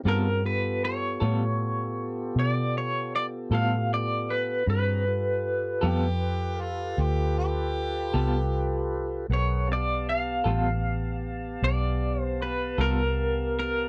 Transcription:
0.04 1.17 G2 medium
0.04 0.28 G3 medium
0.04 0.28 B3 medium
0.04 0.43 C4 medium
0.04 0.29 F4 medium
0.04 0.43 F#4 medium
0.04 0.43 G#4 medium
0.04 0.29 A4 medium
0.04 0.44 A#4 medium
0.08 0.46 A#4 medium
0.44 4.63 B3 medium
0.44 4.64 F4 medium
0.44 4.63 G4 medium
0.44 4.64 A4 medium
0.44 0.84 B4 medium
0.85 2.39 C#5 medium
1.20 2.33 A2 medium
1.20 1.44 G3 medium
1.20 1.44 B3 medium
1.20 1.44 F4 medium
1.20 1.43 A4 medium
2.36 3.48 B2 medium
2.36 2.77 D5 medium
2.78 3.15 C#5 medium
3.16 3.26 D5 medium
3.51 4.63 A2 medium
3.51 3.75 G3 medium
3.51 3.75 B3 medium
3.51 3.75 F4 medium
3.51 3.75 A4 medium
3.51 3.93 F5 medium
3.94 4.31 D5 medium
4.30 4.65 B4 medium
4.66 5.79 G2 medium
4.66 5.05 C4 medium
4.66 5.05 F#4 medium
4.66 5.06 G#4 medium
4.66 6.62 B4 medium
4.66 5.05 A#5 medium
5.07 9.27 F4 medium
5.07 9.27 G4 medium
5.07 9.27 A4 medium
5.07 9.27 B4 medium
5.81 6.95 F2 medium
5.81 6.06 G3 medium
5.81 6.06 B3 medium
5.81 6.06 F4 medium
5.81 6.05 A4 medium
5.86 6.63 G4 medium
6.62 7.03 F4 medium
6.62 7.73 A4 medium
6.98 8.10 D2 medium
6.98 7.37 G4 medium
7.39 8.88 G4 medium
8.14 9.26 C2 medium
8.14 8.38 G3 medium
8.14 8.38 B3 medium
8.14 8.37 F4 medium
8.14 8.37 A4 medium
9.29 10.42 B1 medium
9.29 9.69 G#4 medium
9.29 9.69 A#4 medium
9.29 9.69 B4 medium
9.29 9.68 C#5 medium
9.29 9.69 F#5 medium
9.67 13.89 B3 medium
9.67 13.89 G4 medium
9.67 13.89 F5 medium
9.67 13.89 A5 medium
9.73 10.09 D5 medium
10.09 11.64 F5 loud
10.44 11.58 A1 medium
10.44 10.69 G3 soft
10.44 10.69 B3 medium
10.44 10.69 F4 medium
10.44 10.68 A4 medium
11.62 12.75 B1 medium
11.62 12.22 D5 medium
12.22 12.42 C5 medium
12.42 12.77 B4 medium
12.78 13.89 C2 medium
12.78 13.02 G3 soft
12.78 13.02 B3 medium
12.78 13.01 F4 medium
12.78 13.01 A4 medium
12.78 13.58 A#4 medium
13.59 13.89 A#4 medium

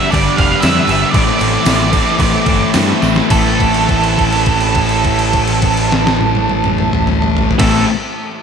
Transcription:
0.00 0.11 G2 medium
0.00 0.13 D3 medium
0.00 0.10 G3 medium
0.00 0.15 G3 medium
0.00 0.13 B3 medium
0.00 0.12 D4 medium
0.00 0.15 B4 medium
0.00 0.11 E5 loud
0.11 0.28 G1 medium
0.11 0.62 G2 loud
0.11 0.40 D3 medium
0.11 0.59 G3 loud
0.11 0.38 B3 loud
0.11 0.39 D4 loud
0.11 0.37 D5 loud
0.11 kick medium
0.11 tambourine medium
0.11 crash medium
0.15 0.37 G3 loud
0.15 0.36 B4 loud
0.37 0.53 F1 medium
0.37 0.65 G3 medium
0.37 0.62 B3 medium
0.37 0.61 D4 medium
0.37 0.63 B4 medium
0.37 0.60 F5 loud
0.37 kick medium
0.37 tambourine soft
0.37 crash medium
0.41 0.64 D3 medium
0.61 0.79 F2 loud
0.61 1.13 G2 medium
0.61 1.11 G3 medium
0.61 0.88 B3 medium
0.61 0.89 D4 medium
0.61 0.86 B4 medium
0.61 1.11 E5 medium
0.61 snare loud
0.61 tambourine medium
0.61 crash medium
0.65 0.91 D3 medium
0.65 0.88 G3 medium
0.87 1.03 G1 medium
0.87 1.13 G3 medium
0.87 1.14 B3 medium
0.87 1.13 D4 medium
0.87 1.14 B4 medium
0.87 tambourine medium
0.87 crash medium
0.92 1.14 D3 medium
1.11 1.29 A1 loud
1.11 1.65 A2 medium
1.11 1.64 A2 loud
1.11 1.62 A3 medium
1.11 1.40 C4 loud
1.11 1.39 E4 medium
1.11 1.37 A4 loud
1.11 2.69 D5 medium
1.11 kick loud
1.11 tambourine soft
1.11 crash medium
1.16 1.42 E3 loud
1.16 1.40 A3 loud
1.38 1.57 A1 medium
1.38 1.67 A3 medium
1.38 1.64 C4 medium
1.38 1.65 E4 medium
1.38 1.66 A4 medium
1.38 tambourine medium
1.38 crash medium
1.44 1.66 E3 medium
1.64 1.98 A1 medium
1.64 2.18 A2 medium
1.64 1.94 E3 medium
1.64 2.17 A3 medium
1.64 1.93 C4 medium
1.64 1.91 E4 medium
1.64 1.89 A4 loud
1.64 snare loud
1.64 tambourine medium
1.64 crash medium
1.69 1.91 A3 medium
1.91 2.21 A3 medium
1.91 2.18 C4 medium
1.91 2.19 E4 medium
1.91 2.19 A4 medium
1.91 kick medium
1.91 tambourine medium
1.91 crash medium
1.95 2.20 E3 medium
2.18 2.36 A1 loud
2.18 2.73 A2 loud
2.18 2.74 A2 medium
2.18 2.48 E3 loud
2.18 2.72 A3 loud
2.18 2.46 C4 loud
2.18 2.45 E4 loud
2.18 2.43 A4 loud
2.18 kick medium
2.18 tambourine medium
2.18 crash medium
2.22 2.45 A3 loud
2.45 2.63 G1 medium
2.45 2.77 A3 medium
2.45 2.73 C4 medium
2.45 2.74 E4 medium
2.45 2.75 A4 medium
2.45 kick medium
2.45 tambourine soft
2.45 crash medium
2.50 2.76 E3 medium
2.73 2.92 G2 medium
2.73 3.29 A2 medium
2.73 3.04 E3 medium
2.73 3.29 A3 medium
2.73 3.03 C4 medium
2.73 3.02 E4 medium
2.73 3.00 A4 medium
2.73 snare loud
2.73 tambourine loud
2.73 crash medium
2.78 3.01 A3 medium
3.01 3.20 A1 medium
3.01 3.29 A3 medium
3.01 3.30 C4 medium
3.01 3.30 E4 medium
3.01 3.29 A4 medium
3.01 snare medium
3.01 tambourine medium
3.05 3.31 E3 medium
3.16 snare medium
3.30 7.48 A1 loud
3.30 7.52 A2 medium
3.30 7.53 E3 loud
3.30 7.53 A3 loud
3.30 7.54 C4 loud
3.30 7.49 A4 medium
3.30 kick loud
3.30 crash medium
3.30 tambourine medium
3.34 7.54 A3 loud
3.34 7.54 E4 loud
3.60 kick medium
3.60 crash soft
3.74 crash medium
3.89 kick medium
3.89 crash soft
4.04 crash soft
4.18 kick medium
4.18 crash medium
4.33 crash medium
4.46 kick medium
4.46 crash soft
4.61 crash medium
4.75 kick medium
4.75 crash soft
4.89 crash soft
5.04 kick medium
5.04 crash soft
5.19 crash medium
5.33 kick medium
5.33 crash medium
5.48 crash medium
5.62 kick medium
5.62 crash medium
5.77 crash medium
5.92 snare medium
6.07 snare loud
6.21 high tom loud
6.35 high tom loud
6.49 high tom medium
6.64 mid tom loud
6.78 mid tom medium
6.93 mid tom loud
7.07 mid tom loud
7.22 mid tom loud
7.37 floor tom loud
7.51 floor tom loud
7.58 7.84 A1 medium
7.58 7.85 A2 loud
7.58 7.86 A2 loud
7.58 7.86 E3 medium
7.58 7.87 E3 loud
7.58 7.86 A3 loud
7.58 7.87 C4 loud
7.58 7.87 E4 loud
7.58 7.83 A4 medium
7.58 kick loud
7.58 snare loud
7.58 crash loud
7.64 7.88 A3 loud

